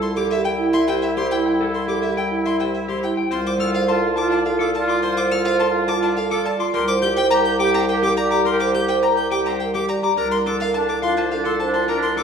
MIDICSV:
0, 0, Header, 1, 6, 480
1, 0, Start_track
1, 0, Tempo, 571429
1, 1341, Time_signature, 3, 2, 24, 8
1, 10274, End_track
2, 0, Start_track
2, 0, Title_t, "Violin"
2, 0, Program_c, 0, 40
2, 17, Note_on_c, 0, 84, 73
2, 109, Note_off_c, 0, 84, 0
2, 138, Note_on_c, 0, 86, 76
2, 229, Note_off_c, 0, 86, 0
2, 257, Note_on_c, 0, 76, 94
2, 349, Note_off_c, 0, 76, 0
2, 376, Note_on_c, 0, 79, 73
2, 468, Note_off_c, 0, 79, 0
2, 617, Note_on_c, 0, 84, 92
2, 709, Note_off_c, 0, 84, 0
2, 738, Note_on_c, 0, 79, 82
2, 829, Note_off_c, 0, 79, 0
2, 857, Note_on_c, 0, 76, 71
2, 949, Note_off_c, 0, 76, 0
2, 982, Note_on_c, 0, 84, 100
2, 1072, Note_off_c, 0, 84, 0
2, 1103, Note_on_c, 0, 79, 75
2, 1192, Note_off_c, 0, 79, 0
2, 1467, Note_on_c, 0, 84, 62
2, 1555, Note_off_c, 0, 84, 0
2, 1583, Note_on_c, 0, 86, 66
2, 1672, Note_off_c, 0, 86, 0
2, 1701, Note_on_c, 0, 76, 79
2, 1791, Note_off_c, 0, 76, 0
2, 1826, Note_on_c, 0, 79, 59
2, 1914, Note_off_c, 0, 79, 0
2, 2065, Note_on_c, 0, 84, 73
2, 2153, Note_off_c, 0, 84, 0
2, 2184, Note_on_c, 0, 79, 53
2, 2273, Note_off_c, 0, 79, 0
2, 2303, Note_on_c, 0, 76, 56
2, 2392, Note_off_c, 0, 76, 0
2, 2426, Note_on_c, 0, 84, 79
2, 2514, Note_off_c, 0, 84, 0
2, 2548, Note_on_c, 0, 79, 57
2, 2635, Note_off_c, 0, 79, 0
2, 2785, Note_on_c, 0, 84, 83
2, 2874, Note_off_c, 0, 84, 0
2, 2910, Note_on_c, 0, 86, 79
2, 2996, Note_off_c, 0, 86, 0
2, 3026, Note_on_c, 0, 89, 78
2, 3114, Note_off_c, 0, 89, 0
2, 3145, Note_on_c, 0, 77, 94
2, 3234, Note_off_c, 0, 77, 0
2, 3264, Note_on_c, 0, 81, 69
2, 3353, Note_off_c, 0, 81, 0
2, 3505, Note_on_c, 0, 86, 79
2, 3594, Note_off_c, 0, 86, 0
2, 3626, Note_on_c, 0, 81, 75
2, 3714, Note_off_c, 0, 81, 0
2, 3744, Note_on_c, 0, 77, 66
2, 3833, Note_off_c, 0, 77, 0
2, 3867, Note_on_c, 0, 86, 86
2, 3954, Note_off_c, 0, 86, 0
2, 3989, Note_on_c, 0, 81, 67
2, 4076, Note_off_c, 0, 81, 0
2, 4106, Note_on_c, 0, 86, 73
2, 4194, Note_off_c, 0, 86, 0
2, 4222, Note_on_c, 0, 84, 97
2, 4312, Note_off_c, 0, 84, 0
2, 4345, Note_on_c, 0, 86, 82
2, 4434, Note_off_c, 0, 86, 0
2, 4463, Note_on_c, 0, 89, 87
2, 4552, Note_off_c, 0, 89, 0
2, 4578, Note_on_c, 0, 77, 98
2, 4669, Note_off_c, 0, 77, 0
2, 4703, Note_on_c, 0, 81, 76
2, 4792, Note_off_c, 0, 81, 0
2, 4940, Note_on_c, 0, 86, 83
2, 5031, Note_off_c, 0, 86, 0
2, 5061, Note_on_c, 0, 81, 81
2, 5151, Note_off_c, 0, 81, 0
2, 5181, Note_on_c, 0, 77, 86
2, 5271, Note_off_c, 0, 77, 0
2, 5301, Note_on_c, 0, 86, 95
2, 5391, Note_off_c, 0, 86, 0
2, 5423, Note_on_c, 0, 81, 74
2, 5512, Note_off_c, 0, 81, 0
2, 5542, Note_on_c, 0, 86, 73
2, 5632, Note_off_c, 0, 86, 0
2, 5659, Note_on_c, 0, 84, 105
2, 5750, Note_off_c, 0, 84, 0
2, 5779, Note_on_c, 0, 86, 97
2, 5869, Note_off_c, 0, 86, 0
2, 5898, Note_on_c, 0, 91, 86
2, 5989, Note_off_c, 0, 91, 0
2, 6020, Note_on_c, 0, 79, 124
2, 6110, Note_off_c, 0, 79, 0
2, 6138, Note_on_c, 0, 82, 80
2, 6229, Note_off_c, 0, 82, 0
2, 6258, Note_on_c, 0, 91, 77
2, 6349, Note_off_c, 0, 91, 0
2, 6382, Note_on_c, 0, 86, 103
2, 6472, Note_off_c, 0, 86, 0
2, 6505, Note_on_c, 0, 82, 84
2, 6594, Note_off_c, 0, 82, 0
2, 6625, Note_on_c, 0, 79, 75
2, 6714, Note_off_c, 0, 79, 0
2, 6747, Note_on_c, 0, 86, 101
2, 6835, Note_off_c, 0, 86, 0
2, 6863, Note_on_c, 0, 82, 79
2, 6953, Note_off_c, 0, 82, 0
2, 6979, Note_on_c, 0, 86, 77
2, 7070, Note_off_c, 0, 86, 0
2, 7104, Note_on_c, 0, 84, 88
2, 7193, Note_off_c, 0, 84, 0
2, 7224, Note_on_c, 0, 86, 84
2, 7313, Note_off_c, 0, 86, 0
2, 7345, Note_on_c, 0, 91, 90
2, 7433, Note_off_c, 0, 91, 0
2, 7463, Note_on_c, 0, 79, 91
2, 7552, Note_off_c, 0, 79, 0
2, 7583, Note_on_c, 0, 82, 66
2, 7672, Note_off_c, 0, 82, 0
2, 7700, Note_on_c, 0, 91, 74
2, 7790, Note_off_c, 0, 91, 0
2, 7823, Note_on_c, 0, 86, 82
2, 7912, Note_off_c, 0, 86, 0
2, 7944, Note_on_c, 0, 82, 74
2, 8033, Note_off_c, 0, 82, 0
2, 8062, Note_on_c, 0, 79, 65
2, 8152, Note_off_c, 0, 79, 0
2, 8183, Note_on_c, 0, 86, 87
2, 8272, Note_off_c, 0, 86, 0
2, 8305, Note_on_c, 0, 82, 67
2, 8394, Note_off_c, 0, 82, 0
2, 8429, Note_on_c, 0, 86, 66
2, 8516, Note_off_c, 0, 86, 0
2, 8544, Note_on_c, 0, 82, 101
2, 8633, Note_off_c, 0, 82, 0
2, 8665, Note_on_c, 0, 84, 75
2, 8753, Note_off_c, 0, 84, 0
2, 8788, Note_on_c, 0, 86, 81
2, 8876, Note_off_c, 0, 86, 0
2, 8906, Note_on_c, 0, 77, 104
2, 8994, Note_off_c, 0, 77, 0
2, 9024, Note_on_c, 0, 81, 65
2, 9113, Note_off_c, 0, 81, 0
2, 9146, Note_on_c, 0, 86, 78
2, 9234, Note_off_c, 0, 86, 0
2, 9262, Note_on_c, 0, 84, 89
2, 9352, Note_off_c, 0, 84, 0
2, 9383, Note_on_c, 0, 81, 66
2, 9472, Note_off_c, 0, 81, 0
2, 9502, Note_on_c, 0, 77, 70
2, 9592, Note_off_c, 0, 77, 0
2, 9620, Note_on_c, 0, 84, 80
2, 9710, Note_off_c, 0, 84, 0
2, 9740, Note_on_c, 0, 81, 75
2, 9831, Note_off_c, 0, 81, 0
2, 9860, Note_on_c, 0, 84, 70
2, 9950, Note_off_c, 0, 84, 0
2, 9981, Note_on_c, 0, 82, 85
2, 10071, Note_off_c, 0, 82, 0
2, 10102, Note_on_c, 0, 84, 80
2, 10192, Note_off_c, 0, 84, 0
2, 10226, Note_on_c, 0, 86, 83
2, 10274, Note_off_c, 0, 86, 0
2, 10274, End_track
3, 0, Start_track
3, 0, Title_t, "Clean electric guitar"
3, 0, Program_c, 1, 27
3, 145, Note_on_c, 1, 67, 71
3, 299, Note_off_c, 1, 67, 0
3, 381, Note_on_c, 1, 79, 80
3, 537, Note_off_c, 1, 79, 0
3, 621, Note_on_c, 1, 76, 96
3, 742, Note_on_c, 1, 72, 74
3, 777, Note_off_c, 1, 76, 0
3, 897, Note_off_c, 1, 72, 0
3, 983, Note_on_c, 1, 67, 88
3, 1138, Note_off_c, 1, 67, 0
3, 1226, Note_on_c, 1, 79, 60
3, 1350, Note_on_c, 1, 69, 77
3, 1379, Note_off_c, 1, 79, 0
3, 1500, Note_off_c, 1, 69, 0
3, 1581, Note_on_c, 1, 67, 67
3, 1737, Note_off_c, 1, 67, 0
3, 1825, Note_on_c, 1, 79, 61
3, 1978, Note_off_c, 1, 79, 0
3, 2064, Note_on_c, 1, 76, 77
3, 2183, Note_on_c, 1, 72, 61
3, 2218, Note_off_c, 1, 76, 0
3, 2338, Note_off_c, 1, 72, 0
3, 2423, Note_on_c, 1, 67, 71
3, 2578, Note_off_c, 1, 67, 0
3, 2665, Note_on_c, 1, 79, 62
3, 2778, Note_on_c, 1, 72, 83
3, 2818, Note_off_c, 1, 79, 0
3, 2936, Note_off_c, 1, 72, 0
3, 3021, Note_on_c, 1, 69, 80
3, 3177, Note_off_c, 1, 69, 0
3, 3262, Note_on_c, 1, 84, 69
3, 3417, Note_off_c, 1, 84, 0
3, 3493, Note_on_c, 1, 81, 100
3, 3613, Note_on_c, 1, 74, 73
3, 3654, Note_off_c, 1, 81, 0
3, 3774, Note_off_c, 1, 74, 0
3, 3857, Note_on_c, 1, 69, 90
3, 4016, Note_off_c, 1, 69, 0
3, 4098, Note_on_c, 1, 84, 81
3, 4225, Note_on_c, 1, 72, 92
3, 4256, Note_off_c, 1, 84, 0
3, 4379, Note_off_c, 1, 72, 0
3, 4464, Note_on_c, 1, 69, 74
3, 4618, Note_off_c, 1, 69, 0
3, 4706, Note_on_c, 1, 84, 81
3, 4859, Note_off_c, 1, 84, 0
3, 4940, Note_on_c, 1, 81, 101
3, 5061, Note_on_c, 1, 74, 76
3, 5097, Note_off_c, 1, 81, 0
3, 5217, Note_off_c, 1, 74, 0
3, 5302, Note_on_c, 1, 69, 93
3, 5457, Note_off_c, 1, 69, 0
3, 5544, Note_on_c, 1, 84, 78
3, 5660, Note_on_c, 1, 70, 94
3, 5698, Note_off_c, 1, 84, 0
3, 5817, Note_off_c, 1, 70, 0
3, 5901, Note_on_c, 1, 67, 88
3, 6057, Note_off_c, 1, 67, 0
3, 6136, Note_on_c, 1, 82, 88
3, 6295, Note_off_c, 1, 82, 0
3, 6383, Note_on_c, 1, 79, 115
3, 6502, Note_on_c, 1, 72, 79
3, 6538, Note_off_c, 1, 79, 0
3, 6657, Note_off_c, 1, 72, 0
3, 6743, Note_on_c, 1, 67, 115
3, 6898, Note_off_c, 1, 67, 0
3, 6978, Note_on_c, 1, 82, 79
3, 7099, Note_on_c, 1, 70, 97
3, 7136, Note_off_c, 1, 82, 0
3, 7256, Note_off_c, 1, 70, 0
3, 7346, Note_on_c, 1, 67, 76
3, 7499, Note_off_c, 1, 67, 0
3, 7585, Note_on_c, 1, 82, 73
3, 7738, Note_off_c, 1, 82, 0
3, 7825, Note_on_c, 1, 79, 96
3, 7950, Note_on_c, 1, 72, 67
3, 7978, Note_off_c, 1, 79, 0
3, 8100, Note_off_c, 1, 72, 0
3, 8188, Note_on_c, 1, 67, 86
3, 8340, Note_off_c, 1, 67, 0
3, 8428, Note_on_c, 1, 82, 77
3, 8549, Note_on_c, 1, 70, 84
3, 8579, Note_off_c, 1, 82, 0
3, 8700, Note_off_c, 1, 70, 0
3, 8788, Note_on_c, 1, 69, 71
3, 8939, Note_off_c, 1, 69, 0
3, 9024, Note_on_c, 1, 81, 76
3, 9178, Note_off_c, 1, 81, 0
3, 9259, Note_on_c, 1, 77, 99
3, 9386, Note_on_c, 1, 72, 71
3, 9416, Note_off_c, 1, 77, 0
3, 9539, Note_off_c, 1, 72, 0
3, 9620, Note_on_c, 1, 69, 88
3, 9777, Note_off_c, 1, 69, 0
3, 9857, Note_on_c, 1, 81, 66
3, 9979, Note_on_c, 1, 70, 81
3, 10016, Note_off_c, 1, 81, 0
3, 10136, Note_off_c, 1, 70, 0
3, 10222, Note_on_c, 1, 69, 68
3, 10274, Note_off_c, 1, 69, 0
3, 10274, End_track
4, 0, Start_track
4, 0, Title_t, "Vibraphone"
4, 0, Program_c, 2, 11
4, 127, Note_on_c, 2, 69, 93
4, 247, Note_on_c, 2, 67, 75
4, 292, Note_off_c, 2, 69, 0
4, 412, Note_off_c, 2, 67, 0
4, 487, Note_on_c, 2, 64, 89
4, 652, Note_off_c, 2, 64, 0
4, 734, Note_on_c, 2, 67, 82
4, 895, Note_off_c, 2, 67, 0
4, 977, Note_on_c, 2, 72, 63
4, 1099, Note_on_c, 2, 64, 73
4, 1136, Note_off_c, 2, 72, 0
4, 1257, Note_off_c, 2, 64, 0
4, 1573, Note_on_c, 2, 69, 71
4, 1697, Note_on_c, 2, 67, 66
4, 1734, Note_off_c, 2, 69, 0
4, 1856, Note_off_c, 2, 67, 0
4, 1941, Note_on_c, 2, 64, 66
4, 2097, Note_off_c, 2, 64, 0
4, 2180, Note_on_c, 2, 67, 57
4, 2337, Note_off_c, 2, 67, 0
4, 2417, Note_on_c, 2, 72, 51
4, 2537, Note_on_c, 2, 64, 63
4, 2576, Note_off_c, 2, 72, 0
4, 2696, Note_off_c, 2, 64, 0
4, 2898, Note_on_c, 2, 72, 69
4, 3056, Note_off_c, 2, 72, 0
4, 3138, Note_on_c, 2, 72, 91
4, 3255, Note_on_c, 2, 69, 67
4, 3296, Note_off_c, 2, 72, 0
4, 3415, Note_off_c, 2, 69, 0
4, 3502, Note_on_c, 2, 65, 92
4, 3657, Note_off_c, 2, 65, 0
4, 3740, Note_on_c, 2, 69, 76
4, 3897, Note_off_c, 2, 69, 0
4, 3983, Note_on_c, 2, 74, 78
4, 4098, Note_on_c, 2, 65, 76
4, 4138, Note_off_c, 2, 74, 0
4, 4256, Note_off_c, 2, 65, 0
4, 4343, Note_on_c, 2, 72, 78
4, 4498, Note_off_c, 2, 72, 0
4, 4582, Note_on_c, 2, 72, 106
4, 4700, Note_on_c, 2, 69, 70
4, 4737, Note_off_c, 2, 72, 0
4, 4857, Note_off_c, 2, 69, 0
4, 4936, Note_on_c, 2, 65, 98
4, 5095, Note_off_c, 2, 65, 0
4, 5179, Note_on_c, 2, 69, 81
4, 5336, Note_off_c, 2, 69, 0
4, 5413, Note_on_c, 2, 74, 89
4, 5535, Note_on_c, 2, 65, 83
4, 5574, Note_off_c, 2, 74, 0
4, 5695, Note_off_c, 2, 65, 0
4, 5772, Note_on_c, 2, 72, 88
4, 5934, Note_off_c, 2, 72, 0
4, 6011, Note_on_c, 2, 72, 121
4, 6131, Note_on_c, 2, 70, 75
4, 6174, Note_off_c, 2, 72, 0
4, 6294, Note_off_c, 2, 70, 0
4, 6369, Note_on_c, 2, 67, 108
4, 6533, Note_off_c, 2, 67, 0
4, 6617, Note_on_c, 2, 70, 91
4, 6776, Note_off_c, 2, 70, 0
4, 6857, Note_on_c, 2, 74, 85
4, 6981, Note_on_c, 2, 67, 82
4, 7016, Note_off_c, 2, 74, 0
4, 7137, Note_off_c, 2, 67, 0
4, 7221, Note_on_c, 2, 72, 77
4, 7377, Note_off_c, 2, 72, 0
4, 7462, Note_on_c, 2, 72, 98
4, 7581, Note_on_c, 2, 70, 64
4, 7617, Note_off_c, 2, 72, 0
4, 7737, Note_off_c, 2, 70, 0
4, 7815, Note_on_c, 2, 67, 82
4, 7975, Note_off_c, 2, 67, 0
4, 8060, Note_on_c, 2, 70, 69
4, 8217, Note_off_c, 2, 70, 0
4, 8298, Note_on_c, 2, 74, 75
4, 8424, Note_on_c, 2, 67, 71
4, 8456, Note_off_c, 2, 74, 0
4, 8578, Note_off_c, 2, 67, 0
4, 8663, Note_on_c, 2, 70, 75
4, 8818, Note_off_c, 2, 70, 0
4, 8904, Note_on_c, 2, 70, 97
4, 9025, Note_on_c, 2, 69, 67
4, 9058, Note_off_c, 2, 70, 0
4, 9178, Note_off_c, 2, 69, 0
4, 9261, Note_on_c, 2, 65, 91
4, 9417, Note_off_c, 2, 65, 0
4, 9502, Note_on_c, 2, 69, 75
4, 9657, Note_off_c, 2, 69, 0
4, 9745, Note_on_c, 2, 72, 83
4, 9863, Note_on_c, 2, 65, 70
4, 9898, Note_off_c, 2, 72, 0
4, 10018, Note_off_c, 2, 65, 0
4, 10106, Note_on_c, 2, 70, 68
4, 10259, Note_off_c, 2, 70, 0
4, 10274, End_track
5, 0, Start_track
5, 0, Title_t, "Oboe"
5, 0, Program_c, 3, 68
5, 0, Note_on_c, 3, 64, 71
5, 2629, Note_off_c, 3, 64, 0
5, 2784, Note_on_c, 3, 65, 41
5, 2959, Note_off_c, 3, 65, 0
5, 3032, Note_on_c, 3, 65, 56
5, 3207, Note_off_c, 3, 65, 0
5, 3278, Note_on_c, 3, 65, 75
5, 3455, Note_off_c, 3, 65, 0
5, 3530, Note_on_c, 3, 65, 81
5, 3707, Note_off_c, 3, 65, 0
5, 3775, Note_on_c, 3, 65, 73
5, 3954, Note_off_c, 3, 65, 0
5, 4033, Note_on_c, 3, 65, 92
5, 4209, Note_off_c, 3, 65, 0
5, 4285, Note_on_c, 3, 65, 81
5, 4461, Note_off_c, 3, 65, 0
5, 4539, Note_on_c, 3, 65, 82
5, 4714, Note_off_c, 3, 65, 0
5, 4791, Note_on_c, 3, 65, 76
5, 4965, Note_off_c, 3, 65, 0
5, 5039, Note_on_c, 3, 65, 61
5, 5215, Note_off_c, 3, 65, 0
5, 5291, Note_on_c, 3, 65, 48
5, 5466, Note_off_c, 3, 65, 0
5, 5665, Note_on_c, 3, 67, 50
5, 5839, Note_off_c, 3, 67, 0
5, 5912, Note_on_c, 3, 67, 65
5, 6088, Note_off_c, 3, 67, 0
5, 6159, Note_on_c, 3, 67, 89
5, 6336, Note_off_c, 3, 67, 0
5, 6411, Note_on_c, 3, 67, 105
5, 6588, Note_off_c, 3, 67, 0
5, 6657, Note_on_c, 3, 67, 95
5, 6835, Note_off_c, 3, 67, 0
5, 6909, Note_on_c, 3, 67, 91
5, 7087, Note_off_c, 3, 67, 0
5, 7157, Note_on_c, 3, 67, 90
5, 7336, Note_off_c, 3, 67, 0
5, 7407, Note_on_c, 3, 67, 79
5, 7586, Note_off_c, 3, 67, 0
5, 7668, Note_on_c, 3, 67, 73
5, 7844, Note_off_c, 3, 67, 0
5, 7916, Note_on_c, 3, 67, 58
5, 8093, Note_off_c, 3, 67, 0
5, 8164, Note_on_c, 3, 67, 40
5, 8342, Note_off_c, 3, 67, 0
5, 8544, Note_on_c, 3, 62, 41
5, 8719, Note_off_c, 3, 62, 0
5, 8792, Note_on_c, 3, 62, 56
5, 8967, Note_off_c, 3, 62, 0
5, 9047, Note_on_c, 3, 62, 74
5, 9221, Note_off_c, 3, 62, 0
5, 9299, Note_on_c, 3, 62, 76
5, 9473, Note_off_c, 3, 62, 0
5, 9548, Note_on_c, 3, 62, 82
5, 9723, Note_off_c, 3, 62, 0
5, 9798, Note_on_c, 3, 62, 91
5, 9973, Note_off_c, 3, 62, 0
5, 10049, Note_on_c, 3, 62, 84
5, 10224, Note_off_c, 3, 62, 0
5, 10274, End_track
6, 0, Start_track
6, 0, Title_t, "Bass clarinet"
6, 0, Program_c, 4, 71
6, 0, Note_on_c, 4, 36, 81
6, 2651, Note_off_c, 4, 36, 0
6, 2783, Note_on_c, 4, 36, 77
6, 5532, Note_off_c, 4, 36, 0
6, 5665, Note_on_c, 4, 36, 86
6, 8414, Note_off_c, 4, 36, 0
6, 8547, Note_on_c, 4, 36, 77
6, 10274, Note_off_c, 4, 36, 0
6, 10274, End_track
0, 0, End_of_file